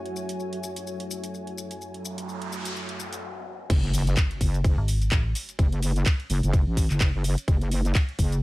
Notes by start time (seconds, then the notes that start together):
Already playing: F#3 F#4 A4 C#5 E5 G#5
0.06 closed hi-hat
0.16 shaker
0.29 closed hi-hat, shaker
0.40 shaker
0.53 closed hi-hat
0.63 shaker
0.76 closed hi-hat, shaker
0.87 shaker
1.00 closed hi-hat
1.11 shaker
1.24 closed hi-hat, shaker
1.34 shaker
1.47 closed hi-hat
1.58 shaker
1.71 closed hi-hat, shaker
1.81 noise sweep, shaker
1.94 closed hi-hat
2.05 shaker
2.18 closed hi-hat, shaker
2.29 shaker
2.42 closed hi-hat
2.52 shaker
2.65 closed hi-hat, shaker
2.76 shaker
2.89 closed hi-hat
3.00 shaker
3.13 closed hi-hat, shaker
3.70 F#1 F#4 A4 C#5, kick, closed hi-hat, crash, ride, impact, shaker
3.83 closed hi-hat
3.94 open hi-hat, shaker
4.07 closed hi-hat, shaker
4.17 kick, clap, closed hi-hat, ride, shaker
4.31 closed hi-hat
4.41 F#1, kick, open hi-hat, shaker
4.54 closed hi-hat, shaker
4.64 kick, closed hi-hat, ride, shaker
4.78 G#1
4.88 open hi-hat, shaker
5.02 closed hi-hat, shaker
5.12 A1, kick, clap, closed hi-hat, ride, shaker
5.35 open hi-hat, shaker
5.49 closed hi-hat, shaker
5.59 F#1, kick, closed hi-hat, ride, shaker
5.72 closed hi-hat
5.82 open hi-hat, shaker
5.96 closed hi-hat, shaker
6.06 kick, clap, closed hi-hat, ride, shaker
6.20 closed hi-hat
6.30 F#1, open hi-hat, shaker
6.43 F#1, closed hi-hat, shaker
6.53 kick, closed hi-hat, ride, shaker
6.67 A1
6.77 kick, open hi-hat, shaker
6.91 F#1, clap, closed hi-hat, shaker
7.01 kick, clap, closed hi-hat, ride, shaker
7.14 F#1
7.24 open hi-hat, shaker
7.38 closed hi-hat, shaker
7.48 F#1, kick, closed hi-hat, ride, shaker
7.61 closed hi-hat
7.72 open hi-hat, shaker
7.85 closed hi-hat, shaker
7.95 kick, clap, closed hi-hat, ride, shaker
8.09 closed hi-hat
8.19 F#1, kick, open hi-hat, shaker
8.32 closed hi-hat, shaker